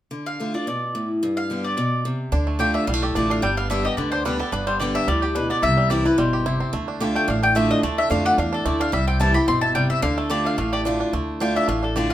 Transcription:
0.11 steel-string acoustic guitar D3
0.26 mandolin F5
0.40 steel-string acoustic guitar D3 A3 D4 F4
0.54 steel-string acoustic guitar D4 F4, mandolin D5
0.67 steel-string acoustic guitar B2, mandolin D5
0.95 steel-string acoustic guitar A2
1.23 steel-string acoustic guitar G2
1.37 mandolin F5
1.50 steel-string acoustic guitar D3 G3 B3 G4
1.64 mandolin D5
1.77 steel-string acoustic guitar B2, mandolin D5
2.05 steel-string acoustic guitar C3
2.32 upright bass D2, steel-string acoustic guitar D3, five-string banjo D4
2.47 five-string banjo A3
2.59 steel-string acoustic guitar D3 A3 D4 F4, five-string banjo G4, mandolin G5
2.74 five-string banjo D4, mandolin E5
2.87 upright bass B1, steel-string acoustic guitar A2, five-string banjo G3, mandolin F5
2.94 five-string banjo A3
3.02 five-string banjo G4, mandolin A4
3.15 upright bass A1, steel-string acoustic guitar D3 A3 D4 F4, five-string banjo D4, mandolin D5
3.30 five-string banjo D4, mandolin F5
3.42 upright bass G1, steel-string acoustic guitar G2, five-string banjo G3, mandolin G5
3.57 five-string banjo B3, mandolin F5
3.70 steel-string acoustic guitar D3 G3 B3 G4, five-string banjo D4, mandolin E5
3.85 steel-string acoustic guitar B3 G4, five-string banjo G4, mandolin D#5
3.97 upright bass D2, steel-string acoustic guitar D3, five-string banjo B3, mandolin D5
4.12 five-string banjo D4, mandolin C5
4.25 steel-string acoustic guitar D3 G3 B3 G4, five-string banjo G3, mandolin B4
4.39 five-string banjo B3, steel-string acoustic guitar B3 G4, mandolin A4
4.52 upright bass G1, steel-string acoustic guitar G2, five-string banjo D4, mandolin B4
4.67 five-string banjo G3, mandolin C5
4.80 steel-string acoustic guitar D3 G3 B3 G4, five-string banjo G4, mandolin D5
4.95 five-string banjo D4, mandolin E5
5.07 upright bass D2, steel-string acoustic guitar A2, five-string banjo G3, mandolin D5
5.22 five-string banjo G4, mandolin G4
5.35 steel-string acoustic guitar B2, five-string banjo D4, mandolin B4
5.50 five-string banjo B3, mandolin D5
5.62 upright bass C2, steel-string acoustic guitar C3, five-string banjo E4, mandolin E5
5.77 five-string banjo G3
5.90 steel-string acoustic guitar E3 G3 C4 E4, five-string banjo G4, mandolin D5
6.05 steel-string acoustic guitar C4 E4, five-string banjo E4, mandolin B4
6.18 upright bass G1, steel-string acoustic guitar B2, five-string banjo G3, mandolin C5
6.33 five-string banjo G4
6.46 steel-string acoustic guitar C3, five-string banjo E4
6.60 five-string banjo C4
6.73 upright bass D2, steel-string acoustic guitar D3, five-string banjo A3
6.88 five-string banjo D4
7.00 steel-string acoustic guitar D3 A3 D4 F4, five-string banjo G4
7.16 five-string banjo A3, mandolin G5
7.28 upright bass A1, steel-string acoustic guitar A2, five-string banjo D4, mandolin F5
7.43 five-string banjo D4, mandolin G5
7.55 steel-string acoustic guitar D3 A3 D4 F4, five-string banjo A3, mandolin E5
7.71 five-string banjo D4, mandolin D#5
7.83 upright bass D2, steel-string acoustic guitar D3, five-string banjo A3, mandolin D5
7.98 five-string banjo D4, mandolin E5
8.10 upright bass F2, steel-string acoustic guitar D3 A3 D4 F4, five-string banjo D4, mandolin F5
8.25 five-string banjo G4, mandolin F#5
8.38 upright bass E2, steel-string acoustic guitar A2, five-string banjo D4, mandolin F5
8.53 five-string banjo D4, mandolin A4
8.65 upright bass D2, steel-string acoustic guitar D3, five-string banjo A3, mandolin D5
8.80 five-string banjo D4, mandolin F5
8.92 upright bass C2, steel-string acoustic guitar C3, five-string banjo G3, mandolin E5
9.08 five-string banjo C4, mandolin G5
9.20 steel-string acoustic guitar E3 G3 C4 E4, five-string banjo E4, mandolin A5
9.34 steel-string acoustic guitar C4 E4, five-string banjo G4, mandolin B5
9.48 upright bass G1, steel-string acoustic guitar B2, five-string banjo C4, mandolin C6
9.61 five-string banjo E4, mandolin A5
9.75 steel-string acoustic guitar C3, five-string banjo G3, mandolin G5
9.90 five-string banjo C4, mandolin E5
10.02 upright bass D2, steel-string acoustic guitar D3, five-string banjo D4, mandolin F5
10.18 five-string banjo A3, mandolin A4
10.30 steel-string acoustic guitar D3 A3 D4 F4, five-string banjo G4, mandolin D5
10.45 five-string banjo D4, mandolin F5
10.58 upright bass A1, steel-string acoustic guitar A2, five-string banjo A3, mandolin F5
10.73 five-string banjo G4, mandolin D5
10.85 steel-string acoustic guitar D3 A3 D4 F4, five-string banjo D4
11.00 five-string banjo D4
11.13 upright bass D2, steel-string acoustic guitar D3, five-string banjo A3
11.40 steel-string acoustic guitar D3 A3 D4 F4, five-string banjo D4, mandolin G5
11.56 five-string banjo D4, mandolin E5
11.68 upright bass A1, steel-string acoustic guitar A2, five-string banjo A3, mandolin F5
11.83 five-string banjo D4, mandolin A4
11.96 steel-string acoustic guitar D3 A3 D4 F4, five-string banjo G4, mandolin D5
12.10 five-string banjo A3, mandolin F5

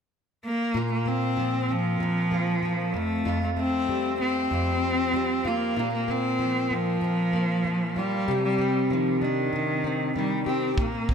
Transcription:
0.45 cello A#3
0.74 steel-string acoustic guitar A#2 F4
0.93 cello A#3
1.06 steel-string acoustic guitar A#3, cello C4
1.37 steel-string acoustic guitar F3
1.69 cello F3, steel-string acoustic guitar C4
2.00 steel-string acoustic guitar A#2
2.31 steel-string acoustic guitar A#3
2.62 steel-string acoustic guitar F3
2.94 steel-string acoustic guitar F2, cello A3
3.25 steel-string acoustic guitar F2 F4
3.43 cello A3
3.56 steel-string acoustic guitar A3, cello C4
3.89 steel-string acoustic guitar G3
4.20 steel-string acoustic guitar C4, cello C4
4.51 steel-string acoustic guitar F2
5.13 steel-string acoustic guitar G3
5.45 cello A#3, steel-string acoustic guitar F4
5.76 steel-string acoustic guitar A#2 F4
5.94 cello A#3
6.08 steel-string acoustic guitar A#3, cello C4
6.39 steel-string acoustic guitar F3
6.70 cello F3, steel-string acoustic guitar C4
7.01 steel-string acoustic guitar A#2
7.33 steel-string acoustic guitar A#3
7.64 steel-string acoustic guitar F3
7.96 cello G3, steel-string acoustic guitar F4
8.28 steel-string acoustic guitar C3 G4
8.44 cello G3
8.58 steel-string acoustic guitar C4
8.90 steel-string acoustic guitar D#3, cello F3
9.21 cello D#3, steel-string acoustic guitar D4
9.53 steel-string acoustic guitar C3
9.84 steel-string acoustic guitar C4
10.16 steel-string acoustic guitar D#3, cello G3
10.46 cello C4, steel-string acoustic guitar G4
10.78 steel-string acoustic guitar A#2, cello A#3, kick
11.09 steel-string acoustic guitar C4, kick

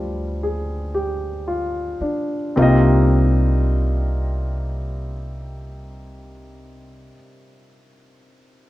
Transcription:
Already playing: upright bass D2, grand piano D3 F3 G3 G#3 B3 F4 B4 D5
0.43 grand piano G#4
0.94 grand piano G4
1.47 grand piano F4
2.01 grand piano D4, muted upright bass stroke
2.56 upright bass C2, grand piano C3 G3 A#3 C4 D#4 F4
2.62 grand piano D#5

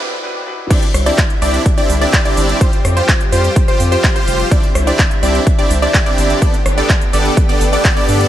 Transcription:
Already playing: swell
0.00 grand piano B2 G3 D4 E4 B4
0.22 grand piano B2 G3 D4 E4 B4
0.46 grand piano B2 G3 D4 E4 B4
0.71 analog synth pad D3 G3 C4 E4, supersaw synth C4 D4 E4 G4 D5, synth pluck D5, kick, closed hi-hat, crash
0.82 closed hi-hat
0.94 sub bass C2, cross-stick, open hi-hat
1.06 supersaw synth C4 D4 E4 G4 D5, synth pluck D5, closed hi-hat
1.18 kick, clap, closed hi-hat
1.30 closed hi-hat
1.42 sub bass C2, supersaw synth C4 D4 E4 G4 D5, synth pluck D5, open hi-hat
1.54 closed hi-hat
1.66 kick, closed hi-hat
1.78 supersaw synth C4 D4 E4 G4 D5, synth pluck D5, closed hi-hat
1.90 sub bass C2, open hi-hat
2.01 supersaw synth C4 D4 E4 G4 D5, synth pluck D5, closed hi-hat
2.13 kick, clap, closed hi-hat
2.25 supersaw synth C4 D4 E4 G4 D5, synth pluck D5, closed hi-hat
2.37 sub bass G1, open hi-hat
2.49 closed hi-hat
2.61 analog synth pad F3 G4, supersaw synth F4 G4 C5, synth pluck C5, kick, closed hi-hat
2.73 closed hi-hat
2.85 sub bass F2, cross-stick, open hi-hat
2.97 supersaw synth F4 G4 C5, synth pluck C5, closed hi-hat
3.09 kick, clap, closed hi-hat
3.21 closed hi-hat
3.32 sub bass F2, supersaw synth F4 G4 C5, synth pluck C5, open hi-hat
3.44 closed hi-hat
3.56 kick, closed hi-hat
3.68 supersaw synth F4 G4 C5, synth pluck C5, closed hi-hat
3.80 sub bass F2, open hi-hat
3.92 supersaw synth F4 G4 C5, synth pluck C5, closed hi-hat
4.04 kick, clap, closed hi-hat
4.16 supersaw synth F4 G4 C5, synth pluck C5, closed hi-hat
4.28 sub bass F1, open hi-hat
4.40 closed hi-hat
4.51 analog synth pad D3 E4, supersaw synth C4 D4 E4 G4 D5, synth pluck D5, kick, closed hi-hat
4.63 closed hi-hat
4.75 sub bass C2, cross-stick, open hi-hat
4.87 supersaw synth C4 D4 E4 G4 D5, synth pluck D5, closed hi-hat
4.99 kick, clap, closed hi-hat
5.11 closed hi-hat
5.23 sub bass C2, supersaw synth C4 D4 E4 G4 D5, synth pluck D5, open hi-hat
5.35 closed hi-hat
5.47 kick, closed hi-hat
5.59 supersaw synth C4 D4 E4 G4 D5, synth pluck D5, closed hi-hat
5.70 sub bass C2, open hi-hat
5.82 supersaw synth C4 D4 E4 G4 D5, synth pluck D5, closed hi-hat
5.94 kick, clap, closed hi-hat
6.06 supersaw synth C4 D4 E4 G4 D5, synth pluck D5, closed hi-hat
6.18 sub bass G1, open hi-hat
6.30 closed hi-hat
6.42 analog synth pad A3 B3 G4, supersaw synth B3 D4 G4 A4 D5, synth pluck D5, kick, closed hi-hat
6.54 closed hi-hat
6.66 sub bass G1, cross-stick, open hi-hat
6.78 supersaw synth B3 D4 G4 A4 D5, synth pluck D5, closed hi-hat
6.89 kick, clap, closed hi-hat
7.01 closed hi-hat
7.13 sub bass G1, supersaw synth B3 D4 G4 A4 D5, synth pluck D5, open hi-hat
7.25 closed hi-hat
7.37 kick, closed hi-hat
7.49 supersaw synth B3 D4 G4 A4 D5, synth pluck D5, closed hi-hat
7.61 sub bass G1, open hi-hat
7.73 supersaw synth B3 D4 G4 A4 D5, synth pluck D5, closed hi-hat
7.85 kick, clap, closed hi-hat
7.97 supersaw synth B3 D4 G4 A4 D5, synth pluck D5, closed hi-hat
8.09 sub bass G2, open hi-hat
8.21 closed hi-hat

